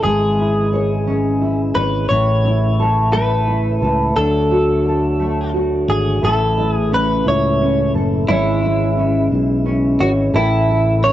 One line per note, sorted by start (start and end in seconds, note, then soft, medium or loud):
0.00 4.12 C#3 medium
0.00 4.12 E3 medium
0.00 2.08 G#3 medium
0.00 0.38 E4 soft
0.00 2.06 E4 medium
0.00 1.75 G#4 medium
0.00 0.12 A4 medium
0.05 1.72 G#1 loud
0.05 2.11 G#3 medium
0.39 1.41 E4 medium
0.73 1.77 C#5 medium
1.07 4.20 C#4 medium
1.41 2.45 E4 medium
1.75 2.08 G#1 medium
1.75 2.08 B4 medium
1.75 2.79 C#5 medium
2.09 3.78 A1 medium
2.09 4.16 A2 medium
2.09 6.18 A3 medium
2.09 4.14 E4 medium
2.09 3.09 C#5 loud
2.45 3.46 E4 medium
2.79 3.81 A4 medium
3.13 5.19 A3 medium
3.13 4.16 B4 medium
3.48 4.23 E4 medium
3.82 4.14 C#2 medium
3.82 4.85 A4 medium
4.14 5.84 D2 medium
4.14 6.19 D3 medium
4.14 6.23 D3 medium
4.14 6.20 F#3 medium
4.14 6.19 F#4 medium
4.14 5.50 A4 medium
4.51 5.53 F#4 medium
4.86 6.23 A4 medium
5.19 8.28 A3 medium
5.54 6.29 F#4 medium
5.88 6.21 G#1 medium
5.88 6.24 G#4 medium
6.21 7.22 A1 loud
6.21 8.28 A2 medium
6.21 8.26 C#3 medium
6.21 11.13 E3 medium
6.21 8.26 A3 medium
6.21 11.13 E4 medium
6.21 7.94 A4 medium
6.21 6.74 A4 medium
6.58 7.26 E4 medium
6.74 6.94 G#4 medium
6.92 7.61 C#4 medium
6.92 7.28 B4 medium
7.26 7.90 C#2 medium
7.26 8.63 E4 medium
7.26 7.91 C#5 medium
7.61 8.97 C#4 medium
7.94 8.26 F#1 medium
7.94 8.29 A4 medium
8.27 9.28 G#1 loud
8.27 11.13 C#3 medium
8.27 10.31 G#3 medium
8.27 10.34 G#3 medium
8.27 9.27 E4 loud
8.27 9.99 C#5 medium
8.63 9.32 E4 medium
8.97 9.65 C#4 medium
9.32 9.96 B1 medium
9.32 10.68 E4 medium
9.66 11.02 C#4 medium
10.00 10.32 G#1 loud
10.00 10.10 F#4 medium
10.00 10.34 C#5 medium
10.33 11.13 A1 loud
10.33 11.13 A2 medium
10.33 11.13 A3 medium
10.33 11.05 E4 medium
10.33 11.13 A4 medium
10.68 11.13 E4 medium
11.02 11.13 C#4 medium
11.02 11.13 C#5 loud